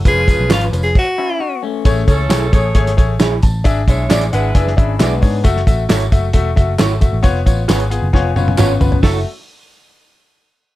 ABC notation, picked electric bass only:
X:1
M:4/4
L:1/16
Q:1/4=134
K:F#m
V:1 name="Picked electric bass" clef=bass
^E,,,3 B,,, G,,,2 E,,,2 z8 | A,,,2 C,,2 B,,,2 A,,,2 G,,,2 A,,,2 ^A,,,2 =A,,,2 | G,,,2 B,,,2 A,,,2 G,,,2 F,,,2 G,,,2 B,,,2 G,,2 | F,,,2 A,,,2 G,,,2 F,,,2 E,,,2 F,,,2 G,,,3 A,,, |
^E,,,2 A,,,2 G,,,3 F,,, E,,,2 F,,,2 G,,,2 =G,,,2 | F,,,2 z12 z2 |]